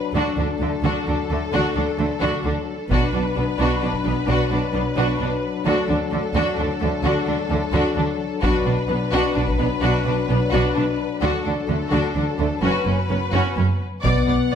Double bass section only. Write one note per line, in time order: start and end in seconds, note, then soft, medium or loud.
0.14 0.22 D2 soft
0.37 0.45 D2 soft
0.60 0.68 D2 soft
0.83 0.91 D2 soft
1.07 1.15 D2 soft
1.31 1.39 D2 soft
1.53 1.61 D2 soft
1.76 1.84 D2 soft
1.99 2.07 D2 soft
2.22 2.30 D2 soft
2.45 2.53 D2 soft
2.90 2.98 B1 soft
3.13 3.21 B1 soft
3.36 3.44 B1 soft
3.59 3.67 B1 medium
3.82 3.90 B1 soft
4.05 4.13 B1 soft
4.28 4.36 B1 medium
4.51 4.59 B1 soft
4.73 4.81 B1 soft
4.97 5.05 B1 medium
5.19 5.27 B1 soft
5.66 5.74 D2 medium
5.89 5.97 D2 soft
6.12 6.20 D2 soft
6.35 6.43 D2 medium
6.58 6.66 D2 soft
6.81 6.89 D2 soft
7.03 7.11 D2 medium
7.27 7.35 D2 soft
7.49 7.57 D2 soft
7.73 7.81 D2 medium
7.96 8.04 D2 soft
8.43 8.51 B1 medium
8.66 8.74 B1 soft
8.89 8.97 B1 soft
9.12 9.20 B1 medium
9.36 9.44 B1 soft
9.59 9.67 B1 soft
9.82 9.90 B1 medium
10.05 10.13 B1 soft
10.29 10.37 B1 soft
10.52 10.60 B1 medium
10.76 10.84 B1 soft
11.22 11.30 D2 soft
11.45 11.53 D2 soft
11.69 11.77 D2 soft
11.92 12.00 D2 medium
12.15 12.23 D2 soft
12.39 12.47 D2 soft
12.62 12.70 F#1 soft
12.86 12.94 F#1 soft
13.10 13.18 F#1 soft
13.33 13.41 F#1 soft
13.58 13.66 F#1 soft
14.05 14.13 B1 soft
14.29 14.37 B1 soft